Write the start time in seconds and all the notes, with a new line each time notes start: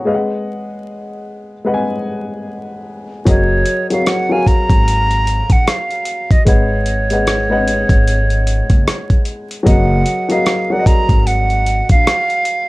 Already playing: C#5 F#5
0.05 G#3 G#4 B4 D#5 F5
0.14 F#5
1.65 G#3 G#4 B4 D#5 F#5
1.74 G#5
3.25 F#1 F#3 F#4 G#4 A#4 C#5 D#5, kick, closed hi-hat
3.66 closed hi-hat
3.90 F#3 F#4 G#4 A#4 C#5 F5, closed hi-hat
4.06 F#5, cross-stick, closed hi-hat
4.29 F#3 F#4 G#4 A#4 F5 G#5
4.46 A#5, kick, closed hi-hat
4.70 G#1, kick, closed hi-hat
4.88 closed hi-hat
5.11 closed hi-hat
5.27 closed hi-hat
5.50 A#1 F#5, kick, closed hi-hat
5.68 F5, cross-stick, closed hi-hat
5.91 closed hi-hat
6.05 closed hi-hat
6.31 D#5, kick, closed hi-hat
6.45 G#1 G#3 G#4 B4 C#5 D#5 F#5, kick, closed hi-hat
6.86 closed hi-hat
7.10 G#3 G#4 B4 D#5 F#5, closed hi-hat
7.27 cross-stick, closed hi-hat
7.49 G#3 G#4 B4 D#5 F#5
7.68 closed hi-hat
7.89 G#1, kick, closed hi-hat
8.07 closed hi-hat
8.30 closed hi-hat
8.47 closed hi-hat
8.70 F#1, kick, closed hi-hat
8.88 cross-stick, closed hi-hat
9.10 kick, closed hi-hat
9.25 closed hi-hat
9.51 closed hi-hat
9.63 F#1 F#3 F#4 G#4 A#4 D#5, kick, closed hi-hat
9.67 F#5
10.06 closed hi-hat
10.29 F#3 F#4 G#4 A#4 D#5 F5, closed hi-hat
10.46 cross-stick, closed hi-hat
10.70 F#3 F#4 G#4 A#4 D5 F#5
10.79 D#5
10.86 A#5, kick, closed hi-hat
11.09 G#1, kick, closed hi-hat
11.27 F#5, closed hi-hat
11.50 closed hi-hat
11.66 closed hi-hat
11.89 A#1 F5, kick, closed hi-hat
12.07 cross-stick, closed hi-hat
12.30 closed hi-hat
12.45 closed hi-hat